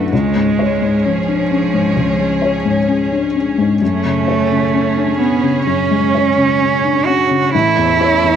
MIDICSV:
0, 0, Header, 1, 4, 480
1, 0, Start_track
1, 0, Key_signature, 3, "minor"
1, 0, Tempo, 927357
1, 60, Time_signature, 4, 2, 24, 8
1, 4328, End_track
2, 0, Start_track
2, 0, Title_t, "String section"
2, 0, Program_c, 0, 48
2, 0, Note_on_c, 0, 50, 37
2, 0, Note_on_c, 0, 66, 38
2, 0, Note_on_c, 0, 71, 39
2, 60, Note_off_c, 0, 50, 0
2, 60, Note_off_c, 0, 66, 0
2, 60, Note_off_c, 0, 71, 0
2, 66, Note_on_c, 0, 73, 42
2, 68, Note_on_c, 0, 61, 43
2, 72, Note_on_c, 0, 68, 41
2, 1967, Note_off_c, 0, 61, 0
2, 1970, Note_off_c, 0, 68, 0
2, 1972, Note_off_c, 0, 73, 0
2, 1973, Note_on_c, 0, 61, 50
2, 1976, Note_on_c, 0, 68, 41
2, 1978, Note_on_c, 0, 73, 44
2, 3879, Note_off_c, 0, 61, 0
2, 3881, Note_off_c, 0, 68, 0
2, 3882, Note_off_c, 0, 73, 0
2, 3909, Note_on_c, 0, 69, 47
2, 3911, Note_on_c, 0, 76, 48
2, 3913, Note_on_c, 0, 73, 49
2, 4328, Note_off_c, 0, 69, 0
2, 4328, Note_off_c, 0, 73, 0
2, 4328, Note_off_c, 0, 76, 0
2, 4328, End_track
3, 0, Start_track
3, 0, Title_t, "Cello"
3, 0, Program_c, 1, 42
3, 0, Note_on_c, 1, 57, 67
3, 56, Note_off_c, 1, 57, 0
3, 59, Note_on_c, 1, 56, 69
3, 538, Note_on_c, 1, 53, 62
3, 546, Note_off_c, 1, 56, 0
3, 1729, Note_off_c, 1, 53, 0
3, 1962, Note_on_c, 1, 57, 79
3, 2667, Note_off_c, 1, 57, 0
3, 2683, Note_on_c, 1, 59, 70
3, 2922, Note_off_c, 1, 59, 0
3, 2925, Note_on_c, 1, 61, 78
3, 3653, Note_on_c, 1, 66, 76
3, 3661, Note_off_c, 1, 61, 0
3, 3897, Note_off_c, 1, 66, 0
3, 3899, Note_on_c, 1, 64, 90
3, 4328, Note_off_c, 1, 64, 0
3, 4328, End_track
4, 0, Start_track
4, 0, Title_t, "Felt piano"
4, 0, Program_c, 2, 0
4, 0, Control_c, 2, 64, 127
4, 0, Note_on_c, 2, 35, 37
4, 0, Note_on_c, 2, 42, 33
4, 0, Note_on_c, 2, 59, 34
4, 0, Note_on_c, 2, 62, 37
4, 0, Note_on_c, 2, 64, 30
4, 0, Note_on_c, 2, 66, 37
4, 62, Note_off_c, 2, 42, 0
4, 65, Note_on_c, 2, 37, 52
4, 70, Control_c, 2, 64, 0
4, 72, Note_off_c, 2, 62, 0
4, 73, Note_off_c, 2, 35, 0
4, 73, Note_off_c, 2, 66, 0
4, 74, Note_off_c, 2, 59, 0
4, 75, Note_off_c, 2, 64, 0
4, 162, Control_c, 2, 64, 127
4, 186, Note_on_c, 2, 44, 37
4, 306, Note_on_c, 2, 73, 38
4, 376, Note_off_c, 2, 44, 0
4, 424, Note_on_c, 2, 44, 35
4, 496, Note_off_c, 2, 73, 0
4, 543, Note_on_c, 2, 61, 34
4, 615, Note_off_c, 2, 44, 0
4, 662, Note_on_c, 2, 62, 33
4, 733, Note_off_c, 2, 61, 0
4, 781, Note_off_c, 2, 62, 0
4, 781, Note_on_c, 2, 61, 37
4, 899, Note_on_c, 2, 44, 34
4, 970, Note_off_c, 2, 61, 0
4, 998, Note_off_c, 2, 37, 0
4, 1016, Note_on_c, 2, 37, 43
4, 1088, Note_off_c, 2, 44, 0
4, 1132, Note_on_c, 2, 56, 34
4, 1253, Note_on_c, 2, 73, 39
4, 1323, Note_off_c, 2, 56, 0
4, 1373, Note_on_c, 2, 44, 37
4, 1443, Note_off_c, 2, 73, 0
4, 1491, Note_on_c, 2, 61, 43
4, 1564, Note_off_c, 2, 44, 0
4, 1615, Note_on_c, 2, 62, 35
4, 1683, Note_off_c, 2, 61, 0
4, 1733, Note_off_c, 2, 62, 0
4, 1734, Note_on_c, 2, 61, 36
4, 1853, Note_on_c, 2, 44, 40
4, 1925, Note_off_c, 2, 61, 0
4, 1950, Note_off_c, 2, 37, 0
4, 1972, Note_off_c, 2, 44, 0
4, 1975, Note_on_c, 2, 42, 58
4, 1981, Control_c, 2, 64, 0
4, 2073, Control_c, 2, 64, 127
4, 2096, Note_on_c, 2, 49, 39
4, 2214, Note_on_c, 2, 73, 40
4, 2286, Note_off_c, 2, 49, 0
4, 2335, Note_on_c, 2, 49, 38
4, 2405, Note_off_c, 2, 73, 0
4, 2456, Note_on_c, 2, 61, 41
4, 2525, Note_off_c, 2, 49, 0
4, 2573, Note_on_c, 2, 62, 32
4, 2646, Note_off_c, 2, 61, 0
4, 2690, Note_on_c, 2, 61, 40
4, 2692, Note_off_c, 2, 62, 0
4, 2810, Note_on_c, 2, 49, 39
4, 2885, Note_off_c, 2, 61, 0
4, 2915, Note_off_c, 2, 42, 0
4, 2933, Note_on_c, 2, 42, 43
4, 3006, Note_off_c, 2, 49, 0
4, 3056, Note_on_c, 2, 56, 36
4, 3182, Note_on_c, 2, 73, 41
4, 3250, Note_off_c, 2, 56, 0
4, 3299, Note_on_c, 2, 49, 42
4, 3373, Note_off_c, 2, 73, 0
4, 3422, Note_on_c, 2, 61, 41
4, 3490, Note_off_c, 2, 49, 0
4, 3542, Note_on_c, 2, 62, 36
4, 3612, Note_off_c, 2, 61, 0
4, 3660, Note_off_c, 2, 62, 0
4, 3661, Note_on_c, 2, 61, 40
4, 3781, Note_on_c, 2, 49, 39
4, 3852, Note_off_c, 2, 61, 0
4, 3878, Note_off_c, 2, 42, 0
4, 3900, Note_off_c, 2, 49, 0
4, 3907, Note_on_c, 2, 33, 54
4, 3909, Control_c, 2, 64, 0
4, 4003, Control_c, 2, 64, 127
4, 4025, Note_on_c, 2, 40, 41
4, 4145, Note_on_c, 2, 73, 43
4, 4216, Note_off_c, 2, 40, 0
4, 4263, Note_on_c, 2, 40, 38
4, 4328, Note_off_c, 2, 33, 0
4, 4328, Note_off_c, 2, 40, 0
4, 4328, Note_off_c, 2, 73, 0
4, 4328, End_track
0, 0, End_of_file